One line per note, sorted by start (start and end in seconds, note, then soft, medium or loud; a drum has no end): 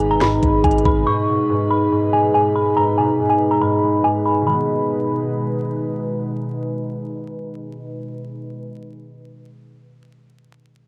0.00 0.39 G#1 loud
0.00 0.20 G#2 medium
0.00 4.43 B2 medium
0.00 0.42 G#3 medium
0.00 4.43 G#3 medium
0.00 4.43 D#4 medium
0.00 1.03 B4 medium
0.11 0.20 A#5 medium
0.21 0.63 G#2 medium
0.21 0.61 B5 medium
0.21 snare loud
0.21 closed hi-hat medium
0.43 0.63 G#1 loud
0.43 1.11 G#3 medium
0.43 kick medium
0.43 closed hi-hat medium
0.64 0.84 G#1 loud
0.64 1.05 G#2 medium
0.64 0.83 G#5 medium
0.64 kick loud
0.64 closed hi-hat medium
0.71 closed hi-hat medium
0.78 closed hi-hat medium
0.85 1.06 G#1 loud
0.85 1.04 B5 medium
0.85 kick medium
1.06 1.33 G#2 medium
1.06 4.43 B4 medium
1.06 1.66 C#6 loud
1.28 1.54 B2 medium
1.49 1.90 G#2 medium
1.70 1.90 B5 medium
1.91 2.33 G#2 medium
2.13 3.82 G#3 medium
2.13 2.32 G#5 medium
2.34 2.76 G#2 medium
2.34 2.53 G#5 medium
2.55 2.75 B5 medium
2.77 3.03 G#2 medium
2.77 2.96 A#5 loud
2.98 3.24 B2 medium
2.98 3.28 G#5 medium
3.19 3.60 G#2 medium
3.30 3.49 G#5 medium
3.51 3.61 A#5 medium
3.61 4.03 G#2 medium
3.61 4.02 B5 medium
3.83 4.48 G#3 medium
4.04 4.52 G#2 medium
4.04 4.23 G#5 medium
4.26 4.45 B5 medium
4.41 8.68 B2 medium
4.41 8.71 D#3 medium
4.47 8.63 B2 medium
4.47 8.63 G#3 medium
4.47 8.76 G#3 medium
4.47 8.63 D#4 medium
4.47 8.63 B4 medium
4.47 5.70 B5 medium
4.53 8.80 B3 medium